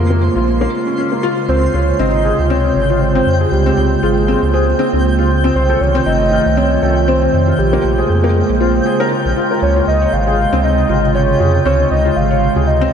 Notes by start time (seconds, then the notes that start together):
Already playing: F2 C#3 G#3 A#3 F4 C5
0.10 A#3
0.36 A#1 F4
0.61 A#3
0.86 C#4
0.98 C#4
1.12 A#3
1.23 F4
1.48 C#2 C3 C4 C5 G5
1.74 C#2 F4 C#5
1.99 G#1 C4 D#5
2.25 G#4
2.39 C#2
2.50 C4 C#5
2.64 C4
2.76 G#1
2.90 F4
3.01 C5
3.15 C4
3.26 F2
3.41 G#4
3.52 C#2 A#3 G4
3.66 C4
3.77 C#2 C4
4.03 G#1 F4 G#4
4.28 C4
4.42 C#2
4.54 G#4 C5
4.79 C4
4.93 C#2 C4
5.19 F4
5.44 C4
5.55 C2 C3 D#3 A3 C5
5.70 A4
5.81 C2 C#5
5.95 C4
6.06 G1 C4 D#5
6.32 F4
6.46 C2
6.57 C4 C#5
6.82 C2 A4
7.08 C4 C5
7.22 C4
7.33 F2
7.47 F4
7.59 A#1 C#3 G#3 A#3 G4
7.73 A#3
7.84 A#1
7.98 G#4
8.09 F2 G#4
8.24 A#3
8.35 A#3
8.49 A#1
8.60 F4 C5
8.86 G#4
9.00 A#4
9.11 F4
9.25 A#1
9.37 F4
9.51 A#4
9.62 C#2 C3 F4 C#5
9.76 F4
9.87 C#2 D#5
10.02 C#5
10.13 G#1 F5
10.27 G#4
10.53 C#2 C4
10.64 C4 D#5
10.89 G#1 F4
11.15 C#5
11.40 F2 G#4
11.65 C#2 C4 C#5
11.80 C4
11.91 C#2 D#5
12.05 F4
12.16 G#1 F5
12.31 C#5
12.56 C#2 G#4
12.67 D#5
12.81 C4